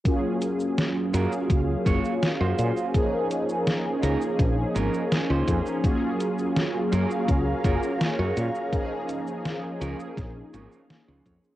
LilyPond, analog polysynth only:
\new Staff \with { instrumentName = "Analog polysynth" } { \time 4/4 \key ges \lydian \tempo 4 = 83 <ges bes des' f' aes'>4. <ges bes des' aes' f''>2~ <ges bes des' aes' f''>8 | <f bes des' ees' aes'>4. <f bes des' ees' aes'>2~ <f bes des' ees' aes'>8 | <ges bes des' f' aes'>4. <ges bes des' aes' f''>2~ <ges bes des' aes' f''>8 | <f bes des' ees' aes'>4. <f bes des' ees' aes'>2~ <f bes des' ees' aes'>8 | }